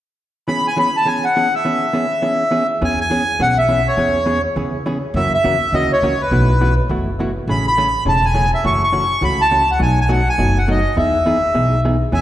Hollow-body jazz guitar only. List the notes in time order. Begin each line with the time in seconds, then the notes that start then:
0.48 E3 B3 C#4 G#4
0.76 E3 B3 C#4 G#4
1.05 E3 B3 C#4 G#4
1.36 E3 B3 C#4 G#4
1.65 E3 B3 C#4 G#4
1.93 E3 B3 C#4 G#4
2.22 E3 B3 C#4 G#4
2.51 E3 B3 C#4 G#4
2.81 E3 B3 C#4 G#4
3.10 E3 B3 C#4 G#4
3.40 E3 B3 C#4 G#4
3.68 E3 B3 C#4 G#4
3.97 E3 B3 C#4 G#4
4.26 E3 B3 C#4 G#4
4.56 E3 B3 C#4 G#4
4.86 E3 B3 C#4 G#4
5.16 C#3 E3 A#3 C#4 F#4
5.44 C#3 E3 A#3 C#4 F#4
5.73 C#3 E3 A#3 C#4 F#4
6.03 C#3 E3 A#3 C#4 F#4
6.31 B2 E3 A3 E4 F#4
6.61 B2 E3 A3 E4 F#4
6.90 B2 E3 A3 E4 F#4
7.19 B2 E3 A3 E4 F#4
7.48 C#3 E3 A3 C#4 G#4
7.77 C#3 E3 A3 C#4 G#4
8.06 C#3 E3 A3 C#4 G#4
8.34 C#3 E3 A3 C#4 G#4
8.64 C#3 E3 A3 C#4 F#4
8.92 C#3 E3 A3 C#4 F#4
9.21 C#3 E3 A3 C#4 F#4
9.51 C#3 E3 A3 C#4 F#4
9.79 B2 F#3 A3 D#4 F#4
10.09 B2 F#3 A3 D#4 F#4
10.38 B2 F#3 A3 D#4 F#4
10.67 B2 F#3 A3 D#4 F#4
10.97 E3 B3 D#4 G#4
11.26 E3 B3 D#4 G#4
11.55 E3 B3 D#4 G#4
11.85 E3 B3 D#4 G#4
12.12 E3 B3 C#4 G#4